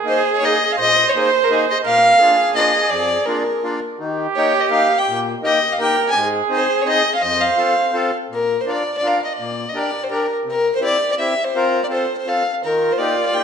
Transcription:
Already playing: trumpet G#4
0.04 accordion A#3 D#4 G#4
0.08 fiddle C5
0.38 accordion A#3 D#4, fiddle C#5
0.42 accordion G#4, fiddle D#5
0.72 fiddle F5
0.78 accordion A#2, trumpet C5, fiddle D#5
1.09 fiddle C#5
1.15 accordion A#3 D#4 G#4, fiddle C5
1.44 fiddle A#4
1.49 accordion A#3 D#4 G#4, fiddle G#4
1.71 fiddle D#5
1.84 accordion A#2, trumpet A#4, fiddle F5
2.19 accordion A#3 D4 F4, trumpet G#4
2.54 accordion A#3 D4 F4, fiddle D#5
2.90 accordion F2, fiddle D5
3.26 accordion A#3 D4 F4, fiddle A#4
3.63 accordion A#3 D4 F4
3.99 accordion D#3, trumpet G4
4.36 accordion A#3 D#4 G4, fiddle C#5
4.60 fiddle D#5
4.70 accordion A#3 D#4 G4, fiddle F5
4.98 fiddle G5
5.08 accordion A#2
5.42 accordion A#3 D#4 G4, fiddle D#5
5.72 fiddle F5
5.78 accordion A#3 D#4 G4, trumpet A#4, fiddle G5
6.09 trumpet G#4, fiddle G#5
6.15 accordion G#2
6.49 accordion C4 D#4 G#4
6.55 fiddle C5
6.82 accordion C4 D#4, fiddle C#5
6.86 accordion G#4, fiddle D#5
7.15 fiddle F5
7.22 accordion F2, trumpet C5, fiddle D#5
7.40 fiddle F5
7.57 accordion C4 F4 A4
7.92 accordion C4 F4 A4
8.30 accordion A#2, fiddle A#4
8.61 fiddle C5
8.66 accordion D4 F4 A#4
8.70 fiddle D5
8.98 fiddle D5
9.02 accordion D4 F4 A#4
9.07 fiddle F5
9.25 fiddle D#5
9.33 fiddle D5
9.39 accordion A#2
9.69 fiddle D#5
9.74 accordion D4 G4 A#4
9.79 fiddle D5
10.04 fiddle C5
10.10 accordion D4 G4 A#4, fiddle A#4
10.45 accordion C3
10.50 fiddle A#4
10.75 fiddle C5
10.80 accordion C4 E4 G4, fiddle D5
11.12 fiddle D5
11.18 accordion C4 E4 G4, fiddle E5
11.45 fiddle C5
11.54 accordion C4 F4 A#4
11.84 fiddle D5
11.89 accordion C4 F4 A4, fiddle C5
12.17 fiddle C5
12.26 accordion C4 F4 A4, fiddle F5
12.61 accordion D#3, trumpet F4, fiddle A#4
12.92 fiddle C5
12.98 accordion A#3 D#4 G4, fiddle D5
13.26 fiddle D5
13.34 accordion A#3 D#4 G4, fiddle G5

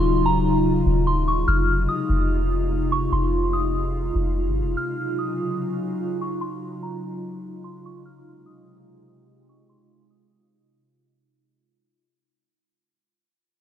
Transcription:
Already playing: 808-style bass D#1, ambient pad C#3 F#3 D#4 F4, synth bell C6
0.26 synth bell A#5
0.86 808-style bass D#1
1.07 synth bell C6
1.28 synth bell C#6
1.48 808-style bass F1, ambient pad C3 G#3 D#4 F4, synth bell F6
1.89 synth bell D#6
2.10 808-style bass F1
2.92 synth bell C#6
3.12 808-style bass F1, synth bell C6
3.53 synth bell D#6
4.15 808-style bass F1
4.46 808-style bass G#1
4.62 808-style bass F1
4.77 ambient pad C#3 F#3 D#4, synth bell F6
5.19 synth bell D#6
6.21 synth bell C#6
6.41 synth bell C6
6.83 synth bell A#5
7.64 synth bell C6
7.86 synth bell C#6
8.05 ambient pad C3 G#3, synth bell F6
8.46 synth bell D#6
9.49 synth bell C#6
9.69 synth bell C6
10.10 synth bell D#6

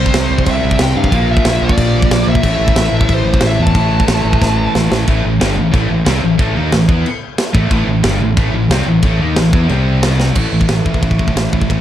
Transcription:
Already playing: distorted electric guitar C3 G3 C4, lead electric guitar C5
0.06 kick
0.14 fingered electric bass C2, snare, crash
0.31 fingered electric bass C2
0.39 kick
0.46 fingered electric bass C2, kick, crash
0.50 lead electric guitar E5
0.64 fingered electric bass C2
0.71 kick
0.79 fingered electric bass C2, lead electric guitar G5, snare, crash
0.96 fingered electric bass G2, lead electric guitar F5
1.04 kick
1.10 fingered electric bass A#1, distorted electric guitar A#2 F3 A#3, kick, crash
1.32 lead electric guitar E5
1.37 kick
1.45 fingered electric bass A#1, snare, crash
1.62 fingered electric bass A#1, lead electric guitar D5
1.69 kick
1.78 fingered electric bass A#1, kick, crash
2.02 kick
2.11 fingered electric bass A#1, snare, crash
2.27 fingered electric bass A#1, lead electric guitar E5
2.35 kick
2.42 fingered electric bass A1, distorted electric guitar A2 E3 A3, kick, crash
2.59 fingered electric bass A1
2.68 kick
2.76 fingered electric bass A1, snare, crash
2.92 fingered electric bass A1
3.01 kick
3.09 fingered electric bass A1, kick, crash
3.13 lead electric guitar C5
3.26 fingered electric bass A1
3.34 kick
3.41 fingered electric bass A1, snare, crash
3.47 lead electric guitar E5
3.59 fingered electric bass E2, lead electric guitar A5
3.67 kick
3.74 fingered electric bass A1, distorted electric guitar A2 E3 A3, kick, crash
4.00 kick
4.08 fingered electric bass A1, snare, crash
4.25 fingered electric bass A1
4.33 kick
4.41 fingered electric bass A1, kick, snare
4.75 fingered electric bass A1, snare
4.92 fingered electric bass A1, snare
5.06 fingered electric bass A1, distorted electric guitar A2 E3 A3, kick, china
5.25 fingered electric bass A1, distorted electric guitar A2 E3
5.40 fingered electric bass G1, distorted electric guitar G2 D3 G3, snare, china
5.56 fingered electric bass A1, distorted electric guitar A2 E3
5.71 fingered electric bass A1, distorted electric guitar A2 E3 A3, kick, china
5.89 fingered electric bass A1, distorted electric guitar A2 E3
6.05 fingered electric bass C2, distorted electric guitar C3 G3 C4, snare, china
6.22 fingered electric bass A1, distorted electric guitar A2 E3
6.38 fingered electric bass A1, distorted electric guitar A2 E3 A3, kick, china
6.55 fingered electric bass D#2, distorted electric guitar D#3 A#3 D#4
6.72 fingered electric bass A1, distorted electric guitar A2 E3, snare, china
6.88 fingered electric bass E2, distorted electric guitar E3 B3 E4, kick
7.06 china
7.38 snare, china
7.53 fingered electric bass A1, distorted electric guitar A2 E3 A3, kick
7.71 fingered electric bass A1, distorted electric guitar A2 E3 A3, kick, china
7.87 fingered electric bass A1, distorted electric guitar A2 E3
8.03 fingered electric bass G1, distorted electric guitar G2 D3 G3, snare, china
8.20 fingered electric bass A1, distorted electric guitar A2 E3
8.37 fingered electric bass A1, distorted electric guitar A2 E3 A3, kick, china
8.53 fingered electric bass A1, distorted electric guitar A2 E3
8.70 fingered electric bass C2, distorted electric guitar C3 G3 C4, snare, china
8.86 fingered electric bass A1, distorted electric guitar A2 E3
9.02 fingered electric bass A1, distorted electric guitar A2 E3 A3, kick, china
9.19 fingered electric bass D#2, distorted electric guitar D#3 A#3 D#4
9.36 fingered electric bass A1, distorted electric guitar A2 E3, snare, china
9.53 fingered electric bass E2, distorted electric guitar E3 B3 E4, kick
9.69 fingered electric bass C2, distorted electric guitar C3 G3 C4, china
10.03 snare, china
10.20 snare
10.35 fingered electric bass A1, distorted electric guitar A2 E3 A3, kick, crash
10.52 fingered electric bass A1, distorted electric guitar A2 E3
10.60 distorted electric guitar A2 E3, kick
10.69 fingered electric bass A1, distorted electric guitar A2 E3, snare, ride bell
10.85 fingered electric bass A1, distorted electric guitar A2 E3, kick
10.94 distorted electric guitar A2 E3, kick
11.02 fingered electric bass A1, distorted electric guitar A2 E3 A3, kick, ride bell
11.11 kick
11.18 fingered electric bass A1, distorted electric guitar A2 E3, kick
11.28 distorted electric guitar A2 E3, kick
11.35 fingered electric bass A1, distorted electric guitar A2 E3, snare, ride bell
11.53 fingered electric bass A1, distorted electric guitar A2 E3, kick
11.60 distorted electric guitar A2 E3, kick
11.70 fingered electric bass A1, distorted electric guitar A2 E3 A3, kick, ride bell

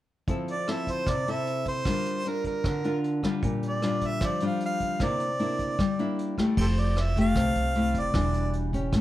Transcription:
0.28 nylon-string guitar F3 C4 E4 A4, kick, closed hi-hat
0.48 harmonica D5, closed hi-hat
0.68 nylon-string guitar C4 E4 A4, harmonica E5, cross-stick, closed hi-hat
0.87 kick, closed hi-hat
0.92 harmonica C5
1.07 nylon-string guitar C3, harmonica D5, kick, cross-stick, closed hi-hat
1.27 nylon-string guitar C4 E4 A4, harmonica E5, closed hi-hat
1.47 closed hi-hat
1.66 harmonica C5, kick, closed hi-hat
1.85 nylon-string guitar G3 D4 F4 A#4, kick, cross-stick, closed hi-hat
2.05 closed hi-hat
2.25 nylon-string guitar D4 F4 A#4, harmonica A#4, closed hi-hat
2.44 harmonica A#4, kick, closed hi-hat
2.64 nylon-string guitar D3, kick, cross-stick, closed hi-hat
2.84 nylon-string guitar D4 F4 A#4, closed hi-hat
3.04 closed hi-hat
3.23 nylon-string guitar G3 D4 F4, kick, cross-stick, closed hi-hat
3.43 nylon-string guitar A#2, kick, closed hi-hat
3.63 closed hi-hat
3.68 harmonica D5
3.82 nylon-string guitar G3 D4 F4, cross-stick, closed hi-hat
4.01 kick, closed hi-hat
4.07 harmonica E5
4.21 nylon-string guitar F3, kick, cross-stick, closed hi-hat
4.26 harmonica D5
4.40 nylon-string guitar G3 D4 F4, closed hi-hat
4.47 harmonica F5
4.60 closed hi-hat
4.66 harmonica F5
4.80 kick, closed hi-hat
5.00 nylon-string guitar C3 A#3 D4 E4, kick, cross-stick, closed hi-hat
5.05 harmonica D5
5.20 closed hi-hat
5.39 nylon-string guitar A#3 D4 E4, closed hi-hat
5.59 kick, closed hi-hat
5.79 nylon-string guitar G3, kick, cross-stick, closed hi-hat
5.99 nylon-string guitar A#3 D4 E4, closed hi-hat
6.19 closed hi-hat
6.38 nylon-string guitar A3 E4 G4, kick, cross-stick, closed hi-hat
6.57 upright bass F1, nylon-string guitar F3, harmonica G4 A4 C5, kick, crash
6.77 harmonica D5, closed hi-hat
6.97 cross-stick, closed hi-hat
7.01 harmonica E5
7.16 nylon-string guitar A3 G4, kick, closed hi-hat
7.20 harmonica F5
7.36 upright bass C2, nylon-string guitar C3, kick, cross-stick, closed hi-hat
7.55 upright bass C2, closed hi-hat
7.75 nylon-string guitar A3 E4 G4, closed hi-hat
7.94 upright bass F1, kick, closed hi-hat
8.00 harmonica D5
8.14 upright bass E1, nylon-string guitar E3 G3 D4 F#4, kick, cross-stick, closed hi-hat
8.34 closed hi-hat
8.53 closed hi-hat
8.73 nylon-string guitar C#4 G4, kick, closed hi-hat
8.92 upright bass A1, nylon-string guitar A3, kick, cross-stick, closed hi-hat

